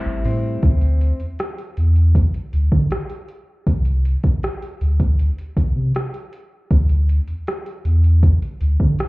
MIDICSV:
0, 0, Header, 1, 5, 480
1, 0, Start_track
1, 0, Tempo, 759494
1, 398, Time_signature, 4, 2, 24, 8
1, 5741, End_track
2, 0, Start_track
2, 0, Title_t, "Synth keys"
2, 0, Program_c, 0, 88
2, 0, Control_c, 0, 64, 127
2, 0, Note_on_c, 0, 45, 65
2, 0, Note_on_c, 0, 57, 63
2, 0, Note_on_c, 0, 64, 63
2, 0, Note_on_c, 0, 67, 65
2, 0, Note_on_c, 0, 72, 76
2, 125, Note_off_c, 0, 45, 0
2, 129, Note_off_c, 0, 57, 0
2, 133, Note_off_c, 0, 64, 0
2, 136, Note_off_c, 0, 67, 0
2, 140, Note_off_c, 0, 72, 0
2, 407, Control_c, 0, 64, 0
2, 5741, End_track
3, 0, Start_track
3, 0, Title_t, "Clean electric guitar"
3, 0, Program_c, 1, 27
3, 0, Note_on_c, 1, 45, 91
3, 0, Note_on_c, 1, 55, 63
3, 0, Note_on_c, 1, 60, 60
3, 0, Note_on_c, 1, 64, 71
3, 157, Note_off_c, 1, 60, 0
3, 160, Note_on_c, 1, 60, 65
3, 398, Note_off_c, 1, 45, 0
3, 446, Note_off_c, 1, 55, 0
3, 446, Note_off_c, 1, 64, 0
3, 763, Note_off_c, 1, 60, 0
3, 5741, End_track
4, 0, Start_track
4, 0, Title_t, "Sub bass"
4, 0, Program_c, 2, 38
4, 39, Note_on_c, 2, 33, 100
4, 142, Note_off_c, 2, 33, 0
4, 160, Note_on_c, 2, 45, 106
4, 366, Note_off_c, 2, 45, 0
4, 399, Note_on_c, 2, 38, 99
4, 708, Note_off_c, 2, 38, 0
4, 760, Note_on_c, 2, 40, 49
4, 808, Note_off_c, 2, 40, 0
4, 1122, Note_on_c, 2, 40, 87
4, 1430, Note_off_c, 2, 40, 0
4, 1601, Note_on_c, 2, 38, 91
4, 1703, Note_off_c, 2, 38, 0
4, 1721, Note_on_c, 2, 50, 98
4, 1823, Note_off_c, 2, 50, 0
4, 2319, Note_on_c, 2, 36, 95
4, 2628, Note_off_c, 2, 36, 0
4, 2679, Note_on_c, 2, 38, 50
4, 2727, Note_off_c, 2, 38, 0
4, 3042, Note_on_c, 2, 38, 87
4, 3350, Note_off_c, 2, 38, 0
4, 3520, Note_on_c, 2, 36, 87
4, 3623, Note_off_c, 2, 36, 0
4, 3642, Note_on_c, 2, 48, 95
4, 3743, Note_off_c, 2, 48, 0
4, 4240, Note_on_c, 2, 38, 106
4, 4549, Note_off_c, 2, 38, 0
4, 4602, Note_on_c, 2, 40, 50
4, 4649, Note_off_c, 2, 40, 0
4, 4961, Note_on_c, 2, 40, 87
4, 5269, Note_off_c, 2, 40, 0
4, 5442, Note_on_c, 2, 38, 90
4, 5544, Note_off_c, 2, 38, 0
4, 5563, Note_on_c, 2, 50, 88
4, 5664, Note_off_c, 2, 50, 0
4, 5741, End_track
5, 0, Start_track
5, 0, Title_t, "Drums"
5, 155, Note_on_c, 9, 46, 75
5, 218, Note_off_c, 9, 46, 0
5, 395, Note_on_c, 9, 42, 72
5, 397, Note_on_c, 9, 36, 112
5, 459, Note_off_c, 9, 42, 0
5, 460, Note_off_c, 9, 36, 0
5, 514, Note_on_c, 9, 42, 47
5, 577, Note_off_c, 9, 42, 0
5, 639, Note_on_c, 9, 42, 61
5, 702, Note_off_c, 9, 42, 0
5, 757, Note_on_c, 9, 42, 46
5, 820, Note_off_c, 9, 42, 0
5, 879, Note_on_c, 9, 42, 62
5, 884, Note_on_c, 9, 37, 110
5, 942, Note_off_c, 9, 42, 0
5, 948, Note_off_c, 9, 37, 0
5, 1001, Note_on_c, 9, 42, 51
5, 1064, Note_off_c, 9, 42, 0
5, 1118, Note_on_c, 9, 42, 62
5, 1182, Note_off_c, 9, 42, 0
5, 1238, Note_on_c, 9, 42, 41
5, 1301, Note_off_c, 9, 42, 0
5, 1359, Note_on_c, 9, 36, 89
5, 1363, Note_on_c, 9, 42, 72
5, 1422, Note_off_c, 9, 36, 0
5, 1426, Note_off_c, 9, 42, 0
5, 1480, Note_on_c, 9, 42, 42
5, 1543, Note_off_c, 9, 42, 0
5, 1599, Note_on_c, 9, 42, 68
5, 1662, Note_off_c, 9, 42, 0
5, 1718, Note_on_c, 9, 36, 93
5, 1782, Note_off_c, 9, 36, 0
5, 1836, Note_on_c, 9, 42, 71
5, 1845, Note_on_c, 9, 37, 117
5, 1899, Note_off_c, 9, 42, 0
5, 1908, Note_off_c, 9, 37, 0
5, 1956, Note_on_c, 9, 42, 46
5, 2020, Note_off_c, 9, 42, 0
5, 2076, Note_on_c, 9, 42, 67
5, 2139, Note_off_c, 9, 42, 0
5, 2317, Note_on_c, 9, 36, 100
5, 2317, Note_on_c, 9, 42, 75
5, 2380, Note_off_c, 9, 42, 0
5, 2381, Note_off_c, 9, 36, 0
5, 2434, Note_on_c, 9, 42, 48
5, 2497, Note_off_c, 9, 42, 0
5, 2561, Note_on_c, 9, 42, 58
5, 2624, Note_off_c, 9, 42, 0
5, 2676, Note_on_c, 9, 42, 47
5, 2678, Note_on_c, 9, 36, 92
5, 2740, Note_off_c, 9, 42, 0
5, 2741, Note_off_c, 9, 36, 0
5, 2801, Note_on_c, 9, 42, 59
5, 2806, Note_on_c, 9, 37, 106
5, 2864, Note_off_c, 9, 42, 0
5, 2870, Note_off_c, 9, 37, 0
5, 2922, Note_on_c, 9, 42, 51
5, 2985, Note_off_c, 9, 42, 0
5, 3041, Note_on_c, 9, 42, 62
5, 3104, Note_off_c, 9, 42, 0
5, 3158, Note_on_c, 9, 36, 74
5, 3159, Note_on_c, 9, 42, 44
5, 3222, Note_off_c, 9, 36, 0
5, 3222, Note_off_c, 9, 42, 0
5, 3282, Note_on_c, 9, 42, 69
5, 3345, Note_off_c, 9, 42, 0
5, 3403, Note_on_c, 9, 42, 47
5, 3466, Note_off_c, 9, 42, 0
5, 3518, Note_on_c, 9, 36, 82
5, 3520, Note_on_c, 9, 42, 66
5, 3581, Note_off_c, 9, 36, 0
5, 3583, Note_off_c, 9, 42, 0
5, 3758, Note_on_c, 9, 42, 70
5, 3767, Note_on_c, 9, 37, 120
5, 3821, Note_off_c, 9, 42, 0
5, 3830, Note_off_c, 9, 37, 0
5, 3881, Note_on_c, 9, 42, 50
5, 3944, Note_off_c, 9, 42, 0
5, 3999, Note_on_c, 9, 42, 62
5, 4062, Note_off_c, 9, 42, 0
5, 4238, Note_on_c, 9, 42, 74
5, 4239, Note_on_c, 9, 36, 108
5, 4302, Note_off_c, 9, 36, 0
5, 4302, Note_off_c, 9, 42, 0
5, 4356, Note_on_c, 9, 42, 48
5, 4419, Note_off_c, 9, 42, 0
5, 4482, Note_on_c, 9, 42, 61
5, 4545, Note_off_c, 9, 42, 0
5, 4598, Note_on_c, 9, 42, 47
5, 4662, Note_off_c, 9, 42, 0
5, 4723, Note_on_c, 9, 42, 60
5, 4729, Note_on_c, 9, 37, 106
5, 4786, Note_off_c, 9, 42, 0
5, 4792, Note_off_c, 9, 37, 0
5, 4842, Note_on_c, 9, 42, 52
5, 4905, Note_off_c, 9, 42, 0
5, 4961, Note_on_c, 9, 42, 62
5, 5024, Note_off_c, 9, 42, 0
5, 5081, Note_on_c, 9, 42, 43
5, 5145, Note_off_c, 9, 42, 0
5, 5201, Note_on_c, 9, 36, 90
5, 5203, Note_on_c, 9, 42, 69
5, 5264, Note_off_c, 9, 36, 0
5, 5266, Note_off_c, 9, 42, 0
5, 5323, Note_on_c, 9, 42, 45
5, 5387, Note_off_c, 9, 42, 0
5, 5439, Note_on_c, 9, 42, 67
5, 5503, Note_off_c, 9, 42, 0
5, 5561, Note_on_c, 9, 36, 91
5, 5624, Note_off_c, 9, 36, 0
5, 5680, Note_on_c, 9, 42, 70
5, 5689, Note_on_c, 9, 37, 121
5, 5741, Note_off_c, 9, 37, 0
5, 5741, Note_off_c, 9, 42, 0
5, 5741, End_track
0, 0, End_of_file